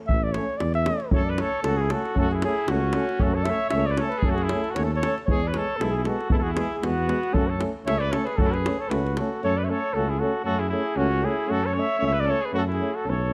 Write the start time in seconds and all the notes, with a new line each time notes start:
0.07 A1 E5, davul low
0.23 D5
0.32 A3 C#4 C#5, davul high
0.57 E2 D5, davul high
0.74 E5, davul high
0.86 A3 C#4, davul high
1.00 davul high
1.11 F#2 A3 C#4 C#5, davul low
1.16 A4
1.25 D5
1.30 B4
1.38 A3 C#4 A4 C#5, davul high
1.63 C#2 A3 C#4 F#4 A4, davul high
1.77 E4 G#4
1.89 A3 C#4 F#4 A4, davul high
2.05 davul high
2.15 F#2 A3 C#4 A4, davul low
2.21 F#4
2.31 E4 G#4
2.42 A3 C#4 G#4, davul high
2.47 E4
2.68 C#2 A3 C#4 F#4, davul high
2.73 C#4
2.93 A3 C#4, davul high
3.09 davul high
3.20 F#2 A3 C#4 F#4 A4, davul low
3.34 A4 C#5
3.44 C#4 E5, davul high
3.49 A3 C#5
3.70 C#2 C#4 E5, davul high
3.75 A3 C#5
3.86 D5
3.91 B4
3.97 A3 C#4 A4 C#5, davul high
4.10 B4, davul high
4.18 G#4
4.22 F#2 A3 C#4 A4, davul low
4.30 F#4
4.36 G#4, davul high
4.43 E4
4.49 C#4, davul high
4.53 A3
4.63 A4, davul high
4.70 F#4
4.75 D#2 A3 C#4 C#5, davul high
4.83 A4 C#5
4.94 A4 C#5
5.01 C#4 A4, davul high
5.06 A3
5.18 davul high
5.25 E2 B3 C#5, davul low
5.30 G#3 G#4
5.43 D5
5.47 B4
5.52 G#3 B3 C#5, davul high
5.57 A4
5.77 B1 B3 A4
5.81 G#3 E4, davul high
5.91 G#4
5.96 E4
6.05 G#3 B3 F#4 A4, davul high
6.20 davul high
6.29 E2 G#3 B3 E4 A4, davul low
6.35 E4 A4
6.41 F#4 G#4
6.47 E4
6.54 G#3 B3 G#4, davul high
6.59 E4
6.73 G#4
6.79 G#3 E4
6.83 E2 B3 F#4, davul high
7.08 G#3 B3, davul high
7.23 davul high
7.33 F#2 A3 C#4 A4, davul low
7.37 F#4
7.49 A4 C#5
7.58 A3 C#4, davul high
7.86 C#2 A3 C#4 C#5 E5, davul high
7.98 B4 D5
8.11 A3 C#4 A4 C#5, davul high
8.25 G#4 B4, davul high
8.37 F#2 A3 C#4 F#4 A4, davul low
8.43 E4 A4
8.49 F#4 B4
8.54 G#4, davul high
8.63 A3 C#4, davul high
8.79 A4 C#5
8.88 C#2 A3 C#4 F#4 B4, davul high
9.07 davul high
9.16 A3 C#4 F#4 A4, davul high
9.42 F#2 A3 C#4 A4 C#5
9.57 B4 D5
9.63 C#5 E5
9.68 A3 C#4 A4 C#5
9.94 C#2 A3 C#4 F#4 A4
10.09 E4 G#4
10.19 A3 C#4 F#4 A4
10.44 F#2 A3 C#4 F#4 A4
10.59 E4 G#4
10.69 A3 C#4 E4 G#4
10.96 C#2 A3 C#4 F#4
11.22 A3 C#4 E4 G#4
11.47 F#2 A3 C#4 F#4
11.52 A4
11.64 A4 C#5
11.74 A3 C#4 C#5
11.80 E5
11.99 C#2 A3 C#4 C#5
12.07 E5
12.13 B4
12.20 D5
12.25 A3 C#4 A4
12.30 C#5
12.41 G#4
12.45 B4
12.52 F#2 A3 C#4 F#4
12.58 A4
12.68 E4
12.73 G#4
12.79 A3 C#4
12.94 F#4 A4
13.05 B1 A3 C#4 A4
13.10 C#5